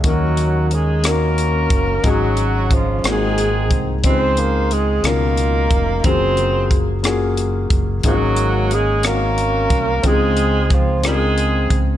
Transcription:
<<
  \new Staff \with { instrumentName = "Horn section" } { \time 6/8 \key des \major \tempo 4. = 60 << { ges'4 aes'8 bes'4. | ges'4 f'8 aes'4 r8 | c''4 aes'8 bes'4. | c''4 r2 |
ges'4 aes'8 bes'4. | aes'4 f'8 aes'4 r8 | } \\ { <bes des'>4. <des' ges'>4. | <des' ees'>4. <c' ees'>4. | <ees' f'>4. <ees' f'>4. | <f' aes'>4. r4. |
<bes des'>4. <des' ges'>4. | <c' f'>4. <c' f'>4. | } >> }
  \new Staff \with { instrumentName = "Grand piano" } { \time 6/8 \key des \major <ees bes des' ees' ges' bes'>4. <bes des' ees' ges' bes'>4. | <aes, aes des' ees' ges' aes'>4. <aes, bes c' f' ges' g' aes'>4. | <des aes c' ees' f' g' aes'>4. <ces des des' ees' f' bes'>4. | <des ges bes f' aes'>4. <bes des' f' ges' aes'>4. |
<aes, bes des' ees' ges' aes'>4. <bes c' des' ees' ges' bes'>4. | <des aes c' ees' f' g' aes'>4. <des c' ees' f' bes'>4. | }
  \new Staff \with { instrumentName = "Tenor saxophone" } { \clef bass \time 6/8 \key des \major ges4 aes8 bes4. | ges4 f8 aes4 r8 | c'8 bes8 aes8 bes4. | c'4 r2 |
ges4 aes8 bes4. | aes4 f8 aes4 r8 | }
  \new Staff \with { instrumentName = "Fingered electric bass" } { \clef bass \time 6/8 \key des \major ees,2~ ees,8 ges,,8 | aes,,4. aes,,4 c,8 | des,4. des,4 f,,8 | ges,,2~ ges,,8 ges,,8 |
aes,,2~ aes,,8 c,8 | des,2~ des,8 des,8 | }
  \new DrumStaff \with { instrumentName = "Drums" } \drummode { \time 6/8 <hh bd>8 hh8 hh8 <hh ss>8 hh8 <hh bd>8 | <hh bd>8 hh8 <hh bd>8 <hh ss>8 hh8 <hh bd>8 | <hh bd>8 hh8 hh8 <hh ss>8 hh8 <hh bd>8 | <hh bd>8 hh8 <hh bd>8 <hh ss>8 hh8 <hh bd>8 |
<hh bd>8 hh8 hh8 <hh ss>8 hh8 <hh bd>8 | <hh bd>8 hh8 <hh bd>8 <hh ss>8 hh8 <hh bd>8 | }
>>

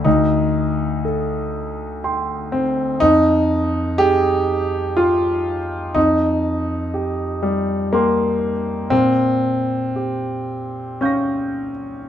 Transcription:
\new Staff \with { instrumentName = "Grand piano" } { \time 3/4 \key c \phrygian \tempo 4 = 61 << { d,4 a'4 <g'' c'''>4 | f,4 aes'4 <g'' c'''>4 | f,4 g'4 <g'' c'''>4 | bes,4 g'4 <f'' des''' g''' bes'''>4 | } \\ { ees'4 r4. c'8 | ees'4 g'4 f'4 | ees'4. g8 bes4 | c'2 des'4 | } >> }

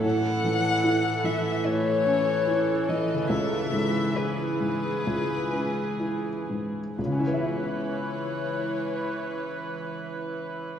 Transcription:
<<
  \new Staff \with { instrumentName = "Violin" } { \time 4/4 \key cis \minor \tempo 4 = 66 fis''4. e''8 cis''4. dis''8 | e''4 b'2~ b'8 r8 | cis''1 | }
  \new Staff \with { instrumentName = "Viola section" } { \time 4/4 \key cis \minor << { a'1~ | a'4 gis'2~ gis'8. r16 | b'1 | } \\ { e1~ | e2.~ e8. r16 | e1 | } >> }
  \new Staff \with { instrumentName = "Harp" } { \time 4/4 \key cis \minor << { <a, cis' e' cis''>1 | <cis cis' e' cis''>1~ | <cis cis' e' cis''>1 | } \\ { r1 | r1 | <cis b cis' e' cis'' e''>1 | } >> }
  \new Staff \with { instrumentName = "Felt piano" } { \clef bass \time 4/4 \key cis \minor a,8 e8 e'8 e8 a,8 cis'8 e'8 e8 | cis,8 gis,8 e'8 gis,8 cis,8 cis'8 e'8 gis,8 | <cis, cis cis' e' b' e''>1 | }
>>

